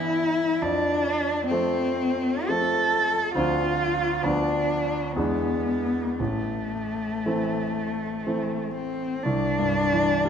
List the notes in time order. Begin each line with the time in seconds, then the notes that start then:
Already playing: G2 E3 B3 E4
0.62 F2 D4
1.48 F3 A3 C4
2.46 F3 A3 C4 A4
3.35 D2 F3 C4 D4 F4
4.23 D2 F3 B3 D4
5.14 E2 E3 G#3 B3
5.18 D4
6.20 A1 A3
7.26 E3 A3 C4
8.26 E3 A3 C4
8.75 C4
9.23 C2 D4
9.59 G2
9.92 E3
10.25 G3